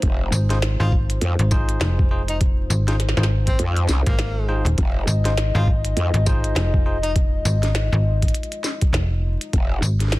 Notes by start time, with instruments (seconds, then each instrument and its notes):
Already playing: analog synth pad G#3 D#4 F4 C5
0.02 wobble bass F1, kick, closed hi-hat
0.32 fm bass G#1, tambourine
0.50 tine electric piano D#4 F4 G#4 C5, snare, closed hi-hat
0.62 snare, closed hi-hat
0.80 fm bass G#1, tine electric piano D#4 F4 G#4 C5, tenor saxophone F4
0.92 kick
1.10 closed hi-hat
1.22 wobble bass F2, closed hi-hat
1.39 fm bass G#1, closed hi-hat
1.51 tine electric piano D#4 F4 G#4 C5, kick, snare, tambourine
1.69 closed hi-hat
1.81 fm bass F1, snare, closed hi-hat
1.99 kick
2.11 tine electric piano D#4 F4 G#4 C5
2.28 tenor saxophone D#4, closed hi-hat
2.41 kick, closed hi-hat
2.70 fm bass G#1, tambourine
2.88 tine electric piano D#4 F4 G#4 C5, snare, closed hi-hat
3.00 snare, closed hi-hat
3.09 snare
3.17 fm bass G#1, tine electric piano D#4 F4 G#4 C5, snare
3.23 snare
3.47 tenor saxophone C4, kick, closed hi-hat
3.59 wobble bass F2, closed hi-hat
3.77 closed hi-hat
3.89 wobble bass C2, snare, tambourine
4.06 fm bass G#1, tenor saxophone A#3, tine electric piano D#4 F4 G#4 C5, kick, closed hi-hat
4.19 snare, closed hi-hat
4.48 tine electric piano D#4 F4 G#4 C5
4.65 fm bass D#1, closed hi-hat
4.78 wobble bass F1, analog synth pad D#5, kick, closed hi-hat
5.07 fm bass G#1, tambourine
5.25 tine electric piano D#4 F4 G#4 C5, snare, closed hi-hat
5.38 snare, closed hi-hat
5.55 fm bass G#1, tine electric piano D#4 F4 G#4 C5, tenor saxophone F4
5.67 kick
5.85 closed hi-hat
5.97 wobble bass F2, closed hi-hat
6.14 fm bass G#1, closed hi-hat
6.26 tine electric piano D#4 F4 G#4 C5, kick, snare, tambourine
6.44 closed hi-hat
6.56 fm bass F1, snare, closed hi-hat
6.74 kick
6.86 tine electric piano D#4 F4 G#4 C5
7.03 tenor saxophone D#4, closed hi-hat
7.16 kick, closed hi-hat
7.45 fm bass G#1, tambourine
7.63 snare, closed hi-hat
7.75 snare, closed hi-hat
7.92 fm bass G#1
8.22 kick, closed hi-hat
8.28 closed hi-hat
8.35 closed hi-hat
8.43 closed hi-hat
8.52 closed hi-hat
8.64 snare, tambourine
8.82 kick, closed hi-hat
8.93 fm bass F1, snare, closed hi-hat
9.41 closed hi-hat
9.53 wobble bass F1, kick, closed hi-hat
9.82 fm bass G#1, tambourine
10.00 snare, closed hi-hat
10.02 snare
10.08 snare
10.12 snare, closed hi-hat